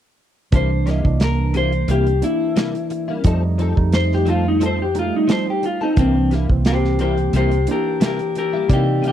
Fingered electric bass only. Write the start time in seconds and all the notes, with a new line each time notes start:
0.53 C2
1.05 C2
1.88 C2
3.25 F2
3.77 F2
5.97 C2
6.50 C2
7.33 C2
8.70 C3